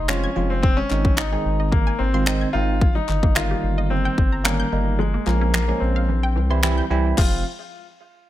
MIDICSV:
0, 0, Header, 1, 6, 480
1, 0, Start_track
1, 0, Key_signature, -4, "minor"
1, 0, Tempo, 545455
1, 557, Time_signature, 4, 2, 24, 8
1, 7300, End_track
2, 0, Start_track
2, 0, Title_t, "Grand piano"
2, 0, Program_c, 0, 0
2, 0, Note_on_c, 0, 63, 98
2, 72, Note_on_c, 0, 61, 94
2, 88, Note_off_c, 0, 63, 0
2, 441, Note_on_c, 0, 60, 87
2, 453, Note_off_c, 0, 61, 0
2, 537, Note_off_c, 0, 60, 0
2, 550, Note_on_c, 0, 60, 98
2, 672, Note_off_c, 0, 60, 0
2, 676, Note_on_c, 0, 61, 105
2, 1030, Note_on_c, 0, 63, 96
2, 1044, Note_off_c, 0, 61, 0
2, 1480, Note_off_c, 0, 63, 0
2, 1510, Note_on_c, 0, 58, 87
2, 1748, Note_on_c, 0, 60, 93
2, 1761, Note_off_c, 0, 58, 0
2, 2226, Note_on_c, 0, 65, 101
2, 2247, Note_off_c, 0, 60, 0
2, 2573, Note_off_c, 0, 65, 0
2, 2597, Note_on_c, 0, 63, 93
2, 2953, Note_on_c, 0, 65, 93
2, 2964, Note_off_c, 0, 63, 0
2, 3435, Note_on_c, 0, 60, 89
2, 3450, Note_off_c, 0, 65, 0
2, 3907, Note_on_c, 0, 58, 87
2, 3930, Note_off_c, 0, 60, 0
2, 4358, Note_off_c, 0, 58, 0
2, 4390, Note_on_c, 0, 56, 92
2, 4631, Note_on_c, 0, 58, 81
2, 4641, Note_off_c, 0, 56, 0
2, 4857, Note_off_c, 0, 58, 0
2, 4871, Note_on_c, 0, 58, 86
2, 5097, Note_off_c, 0, 58, 0
2, 5105, Note_on_c, 0, 60, 77
2, 6036, Note_off_c, 0, 60, 0
2, 6315, Note_on_c, 0, 65, 84
2, 6539, Note_off_c, 0, 65, 0
2, 7300, End_track
3, 0, Start_track
3, 0, Title_t, "Tine electric piano"
3, 0, Program_c, 1, 4
3, 74, Note_on_c, 1, 53, 76
3, 76, Note_on_c, 1, 56, 71
3, 77, Note_on_c, 1, 60, 69
3, 79, Note_on_c, 1, 65, 89
3, 261, Note_off_c, 1, 53, 0
3, 262, Note_off_c, 1, 56, 0
3, 262, Note_off_c, 1, 60, 0
3, 263, Note_off_c, 1, 65, 0
3, 315, Note_on_c, 1, 53, 73
3, 316, Note_on_c, 1, 56, 70
3, 318, Note_on_c, 1, 60, 67
3, 319, Note_on_c, 1, 65, 81
3, 556, Note_off_c, 1, 53, 0
3, 557, Note_off_c, 1, 56, 0
3, 557, Note_off_c, 1, 60, 0
3, 558, Note_off_c, 1, 65, 0
3, 794, Note_on_c, 1, 51, 74
3, 795, Note_on_c, 1, 56, 71
3, 797, Note_on_c, 1, 60, 73
3, 798, Note_on_c, 1, 63, 84
3, 1070, Note_off_c, 1, 51, 0
3, 1070, Note_off_c, 1, 56, 0
3, 1071, Note_off_c, 1, 60, 0
3, 1072, Note_off_c, 1, 63, 0
3, 1162, Note_on_c, 1, 51, 76
3, 1163, Note_on_c, 1, 56, 70
3, 1165, Note_on_c, 1, 60, 73
3, 1166, Note_on_c, 1, 63, 87
3, 1704, Note_off_c, 1, 51, 0
3, 1705, Note_off_c, 1, 56, 0
3, 1706, Note_off_c, 1, 60, 0
3, 1706, Note_off_c, 1, 63, 0
3, 1880, Note_on_c, 1, 51, 75
3, 1882, Note_on_c, 1, 56, 71
3, 1883, Note_on_c, 1, 60, 67
3, 1884, Note_on_c, 1, 65, 84
3, 1967, Note_off_c, 1, 51, 0
3, 1968, Note_off_c, 1, 56, 0
3, 1969, Note_off_c, 1, 60, 0
3, 1969, Note_off_c, 1, 65, 0
3, 1993, Note_on_c, 1, 51, 77
3, 1995, Note_on_c, 1, 56, 71
3, 1997, Note_on_c, 1, 60, 70
3, 1999, Note_on_c, 1, 63, 83
3, 2180, Note_off_c, 1, 51, 0
3, 2181, Note_off_c, 1, 56, 0
3, 2182, Note_off_c, 1, 60, 0
3, 2183, Note_off_c, 1, 63, 0
3, 2232, Note_on_c, 1, 51, 82
3, 2234, Note_on_c, 1, 56, 76
3, 2235, Note_on_c, 1, 60, 79
3, 2237, Note_on_c, 1, 63, 92
3, 2475, Note_off_c, 1, 51, 0
3, 2476, Note_off_c, 1, 56, 0
3, 2476, Note_off_c, 1, 60, 0
3, 2477, Note_off_c, 1, 63, 0
3, 2953, Note_on_c, 1, 51, 86
3, 2954, Note_on_c, 1, 55, 78
3, 2956, Note_on_c, 1, 58, 79
3, 2957, Note_on_c, 1, 63, 96
3, 3682, Note_off_c, 1, 51, 0
3, 3682, Note_off_c, 1, 55, 0
3, 3684, Note_off_c, 1, 58, 0
3, 3684, Note_off_c, 1, 63, 0
3, 3914, Note_on_c, 1, 51, 82
3, 3915, Note_on_c, 1, 55, 73
3, 3916, Note_on_c, 1, 58, 74
3, 3917, Note_on_c, 1, 61, 87
3, 4101, Note_off_c, 1, 51, 0
3, 4101, Note_off_c, 1, 55, 0
3, 4102, Note_off_c, 1, 58, 0
3, 4102, Note_off_c, 1, 61, 0
3, 4154, Note_on_c, 1, 51, 75
3, 4155, Note_on_c, 1, 55, 69
3, 4156, Note_on_c, 1, 58, 69
3, 4157, Note_on_c, 1, 63, 84
3, 4396, Note_off_c, 1, 51, 0
3, 4396, Note_off_c, 1, 55, 0
3, 4397, Note_off_c, 1, 58, 0
3, 4397, Note_off_c, 1, 63, 0
3, 4632, Note_on_c, 1, 53, 80
3, 4632, Note_on_c, 1, 56, 73
3, 4634, Note_on_c, 1, 58, 71
3, 4635, Note_on_c, 1, 61, 83
3, 4909, Note_off_c, 1, 53, 0
3, 4909, Note_off_c, 1, 56, 0
3, 4910, Note_off_c, 1, 58, 0
3, 4911, Note_off_c, 1, 61, 0
3, 5000, Note_on_c, 1, 53, 81
3, 5001, Note_on_c, 1, 56, 72
3, 5002, Note_on_c, 1, 58, 72
3, 5004, Note_on_c, 1, 61, 87
3, 5355, Note_off_c, 1, 53, 0
3, 5356, Note_off_c, 1, 56, 0
3, 5356, Note_off_c, 1, 58, 0
3, 5357, Note_off_c, 1, 61, 0
3, 5721, Note_on_c, 1, 52, 91
3, 5722, Note_on_c, 1, 55, 86
3, 5724, Note_on_c, 1, 60, 81
3, 5726, Note_on_c, 1, 64, 100
3, 5808, Note_off_c, 1, 52, 0
3, 5808, Note_off_c, 1, 55, 0
3, 5810, Note_off_c, 1, 60, 0
3, 5810, Note_off_c, 1, 64, 0
3, 5832, Note_on_c, 1, 52, 92
3, 5834, Note_on_c, 1, 55, 83
3, 5836, Note_on_c, 1, 60, 84
3, 5837, Note_on_c, 1, 64, 94
3, 6020, Note_off_c, 1, 52, 0
3, 6021, Note_off_c, 1, 55, 0
3, 6021, Note_off_c, 1, 60, 0
3, 6022, Note_off_c, 1, 64, 0
3, 6075, Note_on_c, 1, 52, 99
3, 6076, Note_on_c, 1, 55, 92
3, 6078, Note_on_c, 1, 60, 87
3, 6079, Note_on_c, 1, 64, 109
3, 6305, Note_off_c, 1, 60, 0
3, 6314, Note_on_c, 1, 53, 83
3, 6314, Note_on_c, 1, 56, 71
3, 6314, Note_on_c, 1, 65, 93
3, 6315, Note_on_c, 1, 60, 73
3, 6316, Note_off_c, 1, 52, 0
3, 6316, Note_off_c, 1, 55, 0
3, 6318, Note_off_c, 1, 64, 0
3, 6539, Note_off_c, 1, 53, 0
3, 6539, Note_off_c, 1, 56, 0
3, 6539, Note_off_c, 1, 60, 0
3, 6539, Note_off_c, 1, 65, 0
3, 7300, End_track
4, 0, Start_track
4, 0, Title_t, "Synth arpeggio sound"
4, 0, Program_c, 2, 84
4, 81, Note_on_c, 2, 53, 86
4, 188, Note_off_c, 2, 53, 0
4, 207, Note_on_c, 2, 92, 94
4, 302, Note_off_c, 2, 92, 0
4, 321, Note_on_c, 2, 53, 78
4, 428, Note_off_c, 2, 53, 0
4, 560, Note_on_c, 2, 51, 88
4, 668, Note_off_c, 2, 51, 0
4, 686, Note_on_c, 2, 56, 76
4, 782, Note_off_c, 2, 56, 0
4, 801, Note_on_c, 2, 51, 76
4, 908, Note_off_c, 2, 51, 0
4, 927, Note_on_c, 2, 60, 93
4, 1023, Note_off_c, 2, 60, 0
4, 1039, Note_on_c, 2, 51, 71
4, 1147, Note_off_c, 2, 51, 0
4, 1166, Note_on_c, 2, 68, 77
4, 1262, Note_off_c, 2, 68, 0
4, 1406, Note_on_c, 2, 75, 82
4, 1502, Note_off_c, 2, 75, 0
4, 1518, Note_on_c, 2, 51, 72
4, 1627, Note_off_c, 2, 51, 0
4, 1644, Note_on_c, 2, 80, 103
4, 1741, Note_off_c, 2, 80, 0
4, 1759, Note_on_c, 2, 51, 72
4, 1867, Note_off_c, 2, 51, 0
4, 1884, Note_on_c, 2, 84, 90
4, 1981, Note_off_c, 2, 84, 0
4, 1998, Note_on_c, 2, 51, 89
4, 2106, Note_off_c, 2, 51, 0
4, 2122, Note_on_c, 2, 92, 86
4, 2219, Note_off_c, 2, 92, 0
4, 2238, Note_on_c, 2, 51, 80
4, 2346, Note_off_c, 2, 51, 0
4, 2478, Note_on_c, 2, 51, 87
4, 2587, Note_off_c, 2, 51, 0
4, 2606, Note_on_c, 2, 55, 76
4, 2702, Note_off_c, 2, 55, 0
4, 2720, Note_on_c, 2, 51, 75
4, 2828, Note_off_c, 2, 51, 0
4, 2847, Note_on_c, 2, 58, 96
4, 2943, Note_off_c, 2, 58, 0
4, 2959, Note_on_c, 2, 51, 71
4, 3067, Note_off_c, 2, 51, 0
4, 3086, Note_on_c, 2, 67, 80
4, 3182, Note_off_c, 2, 67, 0
4, 3326, Note_on_c, 2, 75, 84
4, 3422, Note_off_c, 2, 75, 0
4, 3440, Note_on_c, 2, 51, 74
4, 3548, Note_off_c, 2, 51, 0
4, 3566, Note_on_c, 2, 79, 98
4, 3662, Note_off_c, 2, 79, 0
4, 3679, Note_on_c, 2, 51, 75
4, 3787, Note_off_c, 2, 51, 0
4, 3805, Note_on_c, 2, 82, 85
4, 3902, Note_off_c, 2, 82, 0
4, 3917, Note_on_c, 2, 51, 89
4, 4026, Note_off_c, 2, 51, 0
4, 4045, Note_on_c, 2, 91, 93
4, 4141, Note_off_c, 2, 91, 0
4, 4156, Note_on_c, 2, 51, 79
4, 4266, Note_off_c, 2, 51, 0
4, 4398, Note_on_c, 2, 53, 82
4, 4506, Note_off_c, 2, 53, 0
4, 4524, Note_on_c, 2, 58, 74
4, 4621, Note_off_c, 2, 58, 0
4, 4638, Note_on_c, 2, 53, 76
4, 4746, Note_off_c, 2, 53, 0
4, 4764, Note_on_c, 2, 61, 90
4, 4861, Note_off_c, 2, 61, 0
4, 4877, Note_on_c, 2, 53, 74
4, 4986, Note_off_c, 2, 53, 0
4, 5005, Note_on_c, 2, 68, 80
4, 5101, Note_off_c, 2, 68, 0
4, 5244, Note_on_c, 2, 77, 85
4, 5341, Note_off_c, 2, 77, 0
4, 5357, Note_on_c, 2, 52, 72
4, 5466, Note_off_c, 2, 52, 0
4, 5485, Note_on_c, 2, 79, 102
4, 5582, Note_off_c, 2, 79, 0
4, 5596, Note_on_c, 2, 52, 76
4, 5705, Note_off_c, 2, 52, 0
4, 5725, Note_on_c, 2, 84, 86
4, 5821, Note_off_c, 2, 84, 0
4, 5837, Note_on_c, 2, 52, 93
4, 5946, Note_off_c, 2, 52, 0
4, 5963, Note_on_c, 2, 91, 92
4, 6060, Note_off_c, 2, 91, 0
4, 6075, Note_on_c, 2, 52, 74
4, 6185, Note_off_c, 2, 52, 0
4, 6314, Note_on_c, 2, 60, 75
4, 6315, Note_on_c, 2, 53, 81
4, 6315, Note_on_c, 2, 56, 74
4, 6315, Note_on_c, 2, 68, 88
4, 6539, Note_off_c, 2, 53, 0
4, 6539, Note_off_c, 2, 56, 0
4, 6539, Note_off_c, 2, 60, 0
4, 6539, Note_off_c, 2, 68, 0
4, 7300, End_track
5, 0, Start_track
5, 0, Title_t, "Analog synth bass"
5, 0, Program_c, 3, 38
5, 0, Note_on_c, 3, 29, 96
5, 237, Note_off_c, 3, 29, 0
5, 321, Note_on_c, 3, 29, 87
5, 718, Note_off_c, 3, 29, 0
5, 800, Note_on_c, 3, 32, 100
5, 1197, Note_off_c, 3, 32, 0
5, 1279, Note_on_c, 3, 32, 87
5, 1677, Note_off_c, 3, 32, 0
5, 1758, Note_on_c, 3, 32, 97
5, 2156, Note_off_c, 3, 32, 0
5, 2238, Note_on_c, 3, 32, 89
5, 2636, Note_off_c, 3, 32, 0
5, 2719, Note_on_c, 3, 31, 102
5, 3117, Note_off_c, 3, 31, 0
5, 3198, Note_on_c, 3, 31, 86
5, 3596, Note_off_c, 3, 31, 0
5, 3678, Note_on_c, 3, 31, 95
5, 4076, Note_off_c, 3, 31, 0
5, 4158, Note_on_c, 3, 31, 88
5, 4556, Note_off_c, 3, 31, 0
5, 4635, Note_on_c, 3, 34, 104
5, 5034, Note_off_c, 3, 34, 0
5, 5117, Note_on_c, 3, 34, 89
5, 5596, Note_on_c, 3, 36, 103
5, 5609, Note_off_c, 3, 34, 0
5, 5995, Note_off_c, 3, 36, 0
5, 6076, Note_on_c, 3, 36, 86
5, 6275, Note_off_c, 3, 36, 0
5, 6316, Note_on_c, 3, 29, 98
5, 6540, Note_off_c, 3, 29, 0
5, 7300, End_track
6, 0, Start_track
6, 0, Title_t, "Drums"
6, 77, Note_on_c, 9, 26, 110
6, 81, Note_on_c, 9, 39, 87
6, 165, Note_off_c, 9, 26, 0
6, 169, Note_off_c, 9, 39, 0
6, 558, Note_on_c, 9, 36, 115
6, 646, Note_off_c, 9, 36, 0
6, 797, Note_on_c, 9, 39, 71
6, 885, Note_off_c, 9, 39, 0
6, 922, Note_on_c, 9, 36, 98
6, 1010, Note_off_c, 9, 36, 0
6, 1037, Note_on_c, 9, 39, 84
6, 1039, Note_on_c, 9, 26, 116
6, 1125, Note_off_c, 9, 39, 0
6, 1127, Note_off_c, 9, 26, 0
6, 1517, Note_on_c, 9, 36, 87
6, 1605, Note_off_c, 9, 36, 0
6, 1998, Note_on_c, 9, 26, 113
6, 1999, Note_on_c, 9, 39, 87
6, 2086, Note_off_c, 9, 26, 0
6, 2087, Note_off_c, 9, 39, 0
6, 2477, Note_on_c, 9, 36, 120
6, 2565, Note_off_c, 9, 36, 0
6, 2718, Note_on_c, 9, 39, 69
6, 2806, Note_off_c, 9, 39, 0
6, 2842, Note_on_c, 9, 36, 100
6, 2930, Note_off_c, 9, 36, 0
6, 2958, Note_on_c, 9, 26, 109
6, 2959, Note_on_c, 9, 39, 82
6, 3046, Note_off_c, 9, 26, 0
6, 3047, Note_off_c, 9, 39, 0
6, 3678, Note_on_c, 9, 36, 89
6, 3766, Note_off_c, 9, 36, 0
6, 3919, Note_on_c, 9, 26, 117
6, 3921, Note_on_c, 9, 39, 93
6, 4007, Note_off_c, 9, 26, 0
6, 4009, Note_off_c, 9, 39, 0
6, 4638, Note_on_c, 9, 39, 67
6, 4726, Note_off_c, 9, 39, 0
6, 4877, Note_on_c, 9, 26, 113
6, 4881, Note_on_c, 9, 39, 82
6, 4965, Note_off_c, 9, 26, 0
6, 4969, Note_off_c, 9, 39, 0
6, 5837, Note_on_c, 9, 26, 114
6, 5840, Note_on_c, 9, 39, 90
6, 5925, Note_off_c, 9, 26, 0
6, 5928, Note_off_c, 9, 39, 0
6, 6317, Note_on_c, 9, 36, 105
6, 6318, Note_on_c, 9, 49, 90
6, 6321, Note_on_c, 9, 39, 76
6, 6405, Note_off_c, 9, 36, 0
6, 6406, Note_off_c, 9, 49, 0
6, 6409, Note_off_c, 9, 39, 0
6, 7300, End_track
0, 0, End_of_file